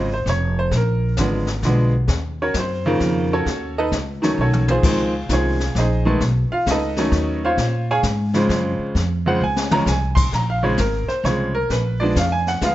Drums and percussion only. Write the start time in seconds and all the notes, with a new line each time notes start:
0.26 kick, snare
0.71 brush sweep, kick, snare
1.17 kick, snare, hi-hat pedal
1.47 snare
1.63 kick, snare
2.08 brush sweep, kick, snare
2.54 kick, snare, hi-hat pedal
3.00 kick, snare
3.46 brush sweep, kick, snare
3.92 kick, snare, hi-hat pedal
4.23 snare
4.53 mid tom
4.68 mid tom
4.83 brush sweep, kick, snare, crash
5.29 kick, snare, hi-hat pedal
5.60 snare
5.75 kick, snare
6.20 brush sweep, kick, snare
6.66 kick, snare, hi-hat pedal
6.96 snare
7.12 kick, snare
7.58 brush sweep, kick, snare
8.03 kick, snare, hi-hat pedal
8.34 snare
8.49 kick, snare
8.95 brush sweep, kick, snare
9.57 snare
9.71 mid tom
9.87 snare, hi-hat pedal
10.17 kick, crash
10.32 brush sweep, kick, snare
10.78 kick, snare, hi-hat pedal
11.09 snare
11.24 kick, snare
11.70 brush sweep, kick, snare
12.16 kick, snare, hi-hat pedal
12.47 snare
12.61 kick, snare, hi-hat pedal